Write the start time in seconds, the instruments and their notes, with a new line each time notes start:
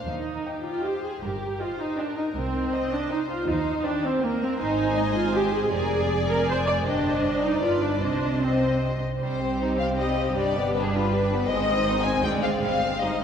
0.07 double bass section D#2, cello section D#2, viola section D#4
0.46 violin section G4 D#5 G5
0.65 viola section F4
0.84 viola section G4, violin section C5 D#5 G5
1.03 viola section G#4
1.22 double bass section G1, cello section G2, viola section G4, violin section A#4
1.60 viola section F4, violin section C5 D#5 G5
1.79 viola section D#4
1.97 viola section D4, violin section A#4 D#5 G5
2.17 viola section D#4
2.35 cello section C2, double bass section C2, viola section C4
2.73 violin section D#5 G5
2.92 viola section D4
3.10 viola section D#4, violin section C5 D#5 G5
3.29 viola section F4
3.47 cello section D#2, double bass section D#2, viola section D#4, violin section C5
3.83 viola section D4, violin section G4 C5 G5
4.04 viola section C4
4.22 viola section A#3, violin section A#4 C5 G5
4.42 viola section C4
4.59 double bass section G#1, cello section G#2, viola section D#4, violin section C5 G#5
4.97 violin section D#5
5.16 viola section F4
5.35 viola section G4, violin section C5
5.53 viola section G#4
5.72 double bass section F1, cello section F2, viola section G#4, violin section A#4 D5 G#5
6.11 violin section G#4
6.29 viola section A#4
6.49 viola section C5
6.67 viola section D5
6.85 double bass section G1, cello section G2, viola section D4, violin section G4 C5 D#5
7.24 violin section D5
7.43 viola section D#4
7.62 double bass section G1, cello section G2, viola section F4, violin section B4 D5
7.82 viola section D4
8.01 double bass section C2, cello section C3, viola section D4, violin section C5 D#5
8.42 viola section C4, violin section C5 D#5
9.20 double bass section C2, cello section C3, viola section G3 C4, violin section G3 G4 C5
9.40 violin section C4
9.60 violin section D#4
9.79 violin section C4 F5
9.97 violin section G3 D#5
10.18 violin section C4
10.35 double bass section G1, cello section G2, violin section G3 D5, viola section D4
10.56 violin section B3
10.73 violin section D4 B4
10.81 violin section G#4
10.88 violin section B4
10.94 violin section F4
11.13 violin section D4
11.32 violin section B3
11.48 double bass section G#1, cello section G#2, viola section D#3 C4, violin section G#3 C5 D#5
11.69 violin section C4
11.87 violin section D#4
12.04 violin section C4 G#5
12.23 cello section D2, double bass section D2, violin section G#3 D5 G5, viola section G#3
12.42 violin section C4 F5
12.61 double bass section G1, cello section G2, violin section G3 C5 F5
12.82 violin section C4
13.01 viola section G3, violin section D#4 D#5